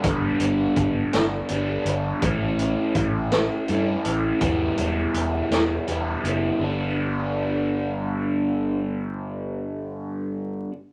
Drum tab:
HH |xxxxxx|xxxxxx|xxxxxx|------|
SD |---o--|---o--|---o--|------|
BD |o-o---|o-o---|o-----|------|

HH |------|
SD |------|
BD |------|